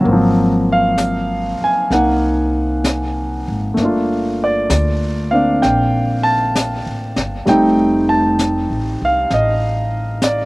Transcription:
0.01 3.74 F#3 soft
0.01 1.89 A#3 medium
0.05 1.56 G#1 medium
0.05 3.78 C4 soft
0.05 brush sweep soft
0.12 3.80 F3 medium
0.72 1.65 F5 medium
0.98 brush sweep soft
0.98 snare soft
0.98 hi-hat pedal medium
1.60 1.93 G#5 medium
1.60 muted upright bass stroke soft
1.91 3.43 C2 medium
1.91 3.76 A#3 soft
1.91 3.79 D#4 soft
1.91 3.44 F#5 medium
1.91 brush sweep soft
1.91 snare soft
2.84 brush sweep soft
2.84 snare soft
2.84 hi-hat pedal soft
3.48 3.75 G#1 medium
3.74 4.66 G1 medium
3.74 7.45 A3 soft
3.74 5.29 A#3 soft
3.74 brush sweep soft
3.74 snare soft
3.82 5.33 D4 soft
3.82 7.51 F4 soft
4.44 5.31 D5 medium
4.70 5.59 D2 medium
4.70 brush sweep soft
4.70 snare soft
4.70 hi-hat pedal soft
5.31 7.46 A#3 soft
5.31 7.47 C4 soft
5.31 7.48 D4 soft
5.31 5.63 F5 medium
5.62 6.82 A#1 medium
5.62 6.27 G5 medium
5.62 brush sweep soft
5.62 snare soft
6.23 7.12 A5 medium
6.56 brush sweep soft
6.56 snare soft
6.56 hi-hat pedal medium
6.86 7.14 A1 soft
7.16 7.45 G1 medium
7.16 snare soft
7.46 8.65 F1 medium
7.46 10.45 G3 soft
7.46 10.45 A3 soft
7.46 10.45 C4 soft
7.46 8.12 G5 medium
7.46 brush sweep soft
7.46 snare soft
7.50 10.45 D#4 medium
8.09 9.04 A5 medium
8.39 brush sweep soft
8.39 snare soft
8.39 hi-hat pedal soft
8.70 8.98 A1 medium
9.02 9.29 C2 medium
9.02 9.33 F5 medium
9.31 10.45 A1 medium
9.31 10.26 D#5 medium
9.31 brush sweep soft
9.31 snare soft
10.22 10.45 D5 medium
10.22 brush sweep soft
10.22 snare soft
10.22 hi-hat pedal medium

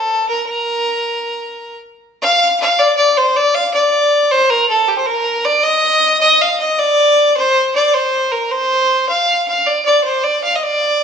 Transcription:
0.00 0.28 A4 medium
0.29 0.46 A#4 medium
0.47 1.77 A#4 loud
2.22 2.57 F5 loud
2.60 2.80 F5 loud
2.79 2.96 D5 loud
2.97 3.19 D5 loud
3.17 3.38 C5 loud
3.36 3.56 D5 loud
3.55 3.73 F5 loud
3.74 4.33 D5 loud
4.31 4.51 C5 loud
4.50 4.69 A#4 loud
4.69 4.90 A4 medium
4.88 4.97 G4 medium
4.98 5.08 C5 medium
5.06 5.46 A#4 loud
5.45 5.65 D5 loud
5.64 6.20 D#5 loud
6.21 6.43 D#5 loud
6.41 6.59 F5 loud
6.60 6.81 D#5 medium
6.79 7.36 D5 loud
7.37 7.72 C5 loud
7.76 7.96 D5 loud
7.94 8.33 C5 loud
8.32 8.53 A#4 medium
8.52 9.08 C5 loud
9.09 9.44 F5 loud
9.48 9.68 F5 loud
9.67 9.85 D5 loud
9.85 10.03 D5 medium
10.04 10.25 C5 medium
10.24 10.43 D5 loud
10.44 10.57 F5 loud
10.55 10.65 D#5 medium
10.63 11.04 D5 loud

